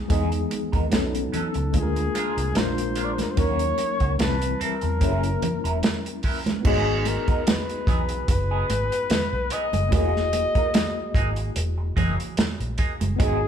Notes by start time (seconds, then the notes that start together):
Already playing: F#3 G#3 B3 D#4 G#4
0.08 E2 E3 G#3 B3 D#4 G#4, kick, closed hi-hat, muted conga
0.32 closed hi-hat
0.51 muted clean electric guitar stroke, closed hi-hat, muted conga
0.72 D#2 G#3 B3 D#4 A#4, kick, closed hi-hat
0.90 B1 F#3 B3 C#4 D#4 A4, muted clean electric guitar stroke, snare, closed hi-hat, high conga
1.15 closed hi-hat
1.32 F#3 C#4 D#4 A4, muted fingered electric bass stroke, closed hi-hat, low conga
1.54 C#2, muted clean electric guitar stroke, closed hi-hat
1.72 D2 G#3 A#3 D4 F4 G#4, muted clean electric guitar stroke, kick, closed hi-hat, muted conga
1.76 G#4
1.83 A#4
1.96 muted clean electric guitar stroke, closed hi-hat
2.15 G#3 D4 F4 A#4, closed hi-hat, muted conga
2.37 C2, muted clean electric guitar stroke, closed hi-hat
2.54 A#1 G#3 A#3 D4 F4 A#4, muted clean electric guitar stroke, snare, closed hi-hat, high conga
2.58 C5
2.78 closed hi-hat
2.96 G#3 D4 F4 A#4, closed hi-hat
3.04 D5
3.13 C5
3.18 muted clean electric guitar stroke, snare, closed hi-hat, high conga
3.22 A#4
3.30 C5
3.36 D#2 F#3 A#3 C#4 D#4 F#4 A#4 C#5, kick, closed hi-hat, muted conga
3.59 closed hi-hat
3.78 muted clean electric guitar stroke, closed hi-hat, muted conga
4.00 C#2 A#3 C#4 F#4 C#5, kick, closed hi-hat
4.17 E3 G3 C4 E4 A5, muted clean electric guitar stroke, snare, closed hi-hat, high conga
4.22 B4
4.42 closed hi-hat
4.60 G3 C4 E4 A4 A#4, muted fingered electric bass stroke, closed hi-hat
4.81 E2, muted clean electric guitar stroke, closed hi-hat
4.97 F#3 A#3, kick, closed hi-hat
5.01 F#1 C#4 E4 G#4 A#4
5.12 A#4
5.23 closed hi-hat
5.42 muted clean electric guitar stroke, closed hi-hat, muted conga, low conga
5.64 E1 F#3 C#4 E4 A#4, closed hi-hat
5.83 snare, closed hi-hat, high conga
6.06 closed hi-hat
6.23 F#3 C#4 E4 A#4, kick, open hi-hat
6.46 muted clean electric guitar stroke, snare, closed hi-hat, high conga
6.61 B3 D#4, kick, crash
6.65 G#1 F#3 B3 D#4 F#4 G#4 D5, muted conga
6.75 D#5
7.05 A#4, muted clean electric guitar stroke, closed hi-hat, muted conga
7.28 F#3 B3 D#4 A#4, muted fingered electric bass stroke, kick, closed hi-hat
7.47 B4, snare, closed hi-hat, high conga
7.69 closed hi-hat
7.87 B1 F#3 B3 D#4 G#4, kick, closed hi-hat, low conga
8.09 muted clean electric guitar stroke, closed hi-hat
8.28 F#1 B4, muted clean electric guitar stroke, kick, closed hi-hat
8.51 F#3 B3 D#4 G#4
8.70 G#1, muted clean electric guitar stroke, closed hi-hat, muted conga
8.92 muted clean electric guitar stroke, closed hi-hat
9.10 muted fingered electric bass stroke, muted clean electric guitar stroke, snare, closed hi-hat, high conga
9.33 B1
9.50 F#3 B3 D#4 G#4 D#5, closed hi-hat
9.73 F#1, muted clean electric guitar stroke, closed hi-hat, high conga
9.89 E1 F#3 A#3 D#4 E4 F#4, kick, closed hi-hat
9.93 G#4 D#5, muted conga
10.16 snare
10.32 muted clean electric guitar stroke, closed hi-hat, muted conga
10.55 F#3 A#3 D#4 A#4, muted fingered electric bass stroke, kick, closed hi-hat
10.74 snare, closed hi-hat, high conga
11.14 G#1 F#3 A#3 D#4 G#4, kick, closed hi-hat
11.36 muted clean electric guitar stroke, closed hi-hat
11.56 E1, muted clean electric guitar stroke, closed hi-hat, muted conga
11.78 muted clean electric guitar stroke
11.96 F#1 F#3 A#3 D#4 G#4, kick, closed hi-hat, muted conga, low conga
12.18 muted clean electric guitar stroke, closed hi-hat
12.37 muted clean electric guitar stroke, muted fingered electric bass stroke, snare, closed hi-hat, high conga
12.60 A#1, closed hi-hat
12.78 F#3 A#3 D#4 G#4, kick, closed hi-hat
13.00 F#1, muted clean electric guitar stroke, closed hi-hat, high conga
13.16 G#1 F#3 B3 D#4 F#4 G#4, kick, closed hi-hat
13.20 G#4 D#5, muted conga